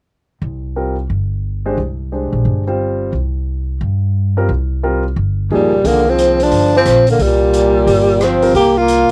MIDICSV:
0, 0, Header, 1, 6, 480
1, 0, Start_track
1, 0, Key_signature, -3, "minor"
1, 0, Tempo, 338983
1, 585, Time_signature, 4, 2, 24, 8
1, 12908, End_track
2, 0, Start_track
2, 0, Title_t, "Grand piano"
2, 0, Program_c, 0, 0
2, 1079, Note_on_c, 0, 55, 46
2, 1080, Note_on_c, 0, 60, 39
2, 1082, Note_on_c, 0, 65, 39
2, 1085, Note_on_c, 0, 70, 45
2, 1347, Note_off_c, 0, 55, 0
2, 1347, Note_off_c, 0, 60, 0
2, 1348, Note_off_c, 0, 65, 0
2, 1350, Note_off_c, 0, 70, 0
2, 2344, Note_on_c, 0, 56, 51
2, 2348, Note_on_c, 0, 62, 45
2, 2352, Note_on_c, 0, 67, 42
2, 2353, Note_on_c, 0, 72, 53
2, 2499, Note_off_c, 0, 56, 0
2, 2501, Note_off_c, 0, 62, 0
2, 2502, Note_off_c, 0, 67, 0
2, 2503, Note_off_c, 0, 72, 0
2, 3002, Note_on_c, 0, 67, 37
2, 3004, Note_on_c, 0, 56, 38
2, 3004, Note_on_c, 0, 62, 34
2, 3010, Note_on_c, 0, 72, 42
2, 3722, Note_off_c, 0, 67, 0
2, 3723, Note_off_c, 0, 56, 0
2, 3723, Note_off_c, 0, 62, 0
2, 3726, Note_off_c, 0, 72, 0
2, 3787, Note_on_c, 0, 55, 50
2, 3787, Note_on_c, 0, 60, 40
2, 3789, Note_on_c, 0, 72, 53
2, 3792, Note_on_c, 0, 65, 45
2, 4405, Note_off_c, 0, 55, 0
2, 4405, Note_off_c, 0, 60, 0
2, 4406, Note_off_c, 0, 72, 0
2, 4407, Note_off_c, 0, 65, 0
2, 6189, Note_on_c, 0, 55, 55
2, 6189, Note_on_c, 0, 60, 52
2, 6191, Note_on_c, 0, 65, 48
2, 6198, Note_on_c, 0, 70, 61
2, 6344, Note_off_c, 0, 55, 0
2, 6344, Note_off_c, 0, 60, 0
2, 6345, Note_off_c, 0, 65, 0
2, 6348, Note_off_c, 0, 70, 0
2, 6843, Note_on_c, 0, 60, 47
2, 6845, Note_on_c, 0, 55, 54
2, 6845, Note_on_c, 0, 65, 54
2, 6851, Note_on_c, 0, 70, 63
2, 7113, Note_off_c, 0, 60, 0
2, 7114, Note_off_c, 0, 55, 0
2, 7114, Note_off_c, 0, 65, 0
2, 7117, Note_off_c, 0, 70, 0
2, 7808, Note_on_c, 0, 58, 46
2, 7810, Note_on_c, 0, 53, 47
2, 7813, Note_on_c, 0, 63, 46
2, 7814, Note_on_c, 0, 68, 54
2, 8075, Note_off_c, 0, 58, 0
2, 8076, Note_off_c, 0, 53, 0
2, 8077, Note_off_c, 0, 63, 0
2, 8078, Note_off_c, 0, 68, 0
2, 8278, Note_on_c, 0, 53, 43
2, 8281, Note_on_c, 0, 51, 44
2, 8283, Note_on_c, 0, 58, 39
2, 8284, Note_on_c, 0, 68, 51
2, 9608, Note_off_c, 0, 53, 0
2, 9610, Note_off_c, 0, 51, 0
2, 9611, Note_off_c, 0, 58, 0
2, 9612, Note_off_c, 0, 68, 0
2, 11935, Note_on_c, 0, 55, 56
2, 11935, Note_on_c, 0, 60, 49
2, 11936, Note_on_c, 0, 70, 63
2, 11937, Note_on_c, 0, 65, 49
2, 12091, Note_off_c, 0, 55, 0
2, 12091, Note_off_c, 0, 60, 0
2, 12091, Note_off_c, 0, 70, 0
2, 12092, Note_off_c, 0, 65, 0
2, 12908, End_track
3, 0, Start_track
3, 0, Title_t, "Tenor saxophone"
3, 0, Program_c, 1, 66
3, 7837, Note_on_c, 1, 55, 75
3, 8311, Note_on_c, 1, 58, 82
3, 8332, Note_off_c, 1, 55, 0
3, 8631, Note_on_c, 1, 60, 77
3, 8652, Note_off_c, 1, 58, 0
3, 9101, Note_on_c, 1, 62, 74
3, 9123, Note_off_c, 1, 60, 0
3, 9559, Note_off_c, 1, 62, 0
3, 9583, Note_on_c, 1, 60, 86
3, 10007, Note_off_c, 1, 60, 0
3, 10064, Note_on_c, 1, 58, 75
3, 10225, Note_on_c, 1, 55, 82
3, 10246, Note_off_c, 1, 58, 0
3, 11664, Note_on_c, 1, 60, 84
3, 11685, Note_off_c, 1, 55, 0
3, 12106, Note_off_c, 1, 60, 0
3, 12114, Note_on_c, 1, 67, 90
3, 12427, Note_on_c, 1, 65, 96
3, 12448, Note_off_c, 1, 67, 0
3, 12896, Note_off_c, 1, 65, 0
3, 12908, End_track
4, 0, Start_track
4, 0, Title_t, "Trombone"
4, 0, Program_c, 2, 57
4, 7815, Note_on_c, 2, 46, 61
4, 8293, Note_on_c, 2, 50, 73
4, 8314, Note_off_c, 2, 46, 0
4, 8626, Note_on_c, 2, 53, 71
4, 8647, Note_off_c, 2, 50, 0
4, 9085, Note_off_c, 2, 53, 0
4, 9085, Note_on_c, 2, 53, 69
4, 9550, Note_off_c, 2, 53, 0
4, 9567, Note_on_c, 2, 53, 67
4, 9998, Note_off_c, 2, 53, 0
4, 10033, Note_on_c, 2, 50, 60
4, 10226, Note_on_c, 2, 46, 71
4, 10247, Note_off_c, 2, 50, 0
4, 11637, Note_on_c, 2, 53, 70
4, 11658, Note_off_c, 2, 46, 0
4, 12110, Note_off_c, 2, 53, 0
4, 12124, Note_on_c, 2, 58, 76
4, 12430, Note_off_c, 2, 58, 0
4, 12430, Note_on_c, 2, 58, 83
4, 12897, Note_off_c, 2, 58, 0
4, 12908, End_track
5, 0, Start_track
5, 0, Title_t, "Upright bass"
5, 0, Program_c, 3, 32
5, 590, Note_on_c, 3, 36, 70
5, 1503, Note_off_c, 3, 36, 0
5, 1554, Note_on_c, 3, 31, 68
5, 2467, Note_off_c, 3, 31, 0
5, 2515, Note_on_c, 3, 36, 67
5, 3244, Note_off_c, 3, 36, 0
5, 3292, Note_on_c, 3, 34, 63
5, 3459, Note_off_c, 3, 34, 0
5, 3470, Note_on_c, 3, 31, 66
5, 4385, Note_off_c, 3, 31, 0
5, 4427, Note_on_c, 3, 36, 68
5, 5344, Note_off_c, 3, 36, 0
5, 5393, Note_on_c, 3, 43, 78
5, 6307, Note_off_c, 3, 43, 0
5, 6355, Note_on_c, 3, 36, 72
5, 7268, Note_off_c, 3, 36, 0
5, 7311, Note_on_c, 3, 31, 71
5, 7760, Note_off_c, 3, 31, 0
5, 7794, Note_on_c, 3, 37, 65
5, 8241, Note_off_c, 3, 37, 0
5, 8271, Note_on_c, 3, 36, 67
5, 9184, Note_off_c, 3, 36, 0
5, 9227, Note_on_c, 3, 31, 71
5, 9676, Note_off_c, 3, 31, 0
5, 9707, Note_on_c, 3, 34, 68
5, 10155, Note_off_c, 3, 34, 0
5, 10178, Note_on_c, 3, 36, 74
5, 11094, Note_off_c, 3, 36, 0
5, 11140, Note_on_c, 3, 31, 69
5, 12053, Note_off_c, 3, 31, 0
5, 12099, Note_on_c, 3, 36, 73
5, 12828, Note_off_c, 3, 36, 0
5, 12908, End_track
6, 0, Start_track
6, 0, Title_t, "Drums"
6, 8278, Note_on_c, 9, 46, 36
6, 8419, Note_off_c, 9, 46, 0
6, 8756, Note_on_c, 9, 42, 43
6, 8898, Note_off_c, 9, 42, 0
6, 9058, Note_on_c, 9, 46, 32
6, 9199, Note_off_c, 9, 46, 0
6, 9225, Note_on_c, 9, 46, 35
6, 9367, Note_off_c, 9, 46, 0
6, 9706, Note_on_c, 9, 42, 44
6, 9711, Note_on_c, 9, 37, 50
6, 9847, Note_off_c, 9, 42, 0
6, 9853, Note_off_c, 9, 37, 0
6, 10007, Note_on_c, 9, 46, 29
6, 10149, Note_off_c, 9, 46, 0
6, 10186, Note_on_c, 9, 46, 34
6, 10328, Note_off_c, 9, 46, 0
6, 10669, Note_on_c, 9, 42, 44
6, 10811, Note_off_c, 9, 42, 0
6, 11147, Note_on_c, 9, 46, 35
6, 11289, Note_off_c, 9, 46, 0
6, 11620, Note_on_c, 9, 42, 43
6, 11625, Note_on_c, 9, 37, 56
6, 11761, Note_off_c, 9, 42, 0
6, 11767, Note_off_c, 9, 37, 0
6, 11927, Note_on_c, 9, 46, 28
6, 12068, Note_off_c, 9, 46, 0
6, 12101, Note_on_c, 9, 46, 33
6, 12243, Note_off_c, 9, 46, 0
6, 12574, Note_on_c, 9, 42, 45
6, 12716, Note_off_c, 9, 42, 0
6, 12908, End_track
0, 0, End_of_file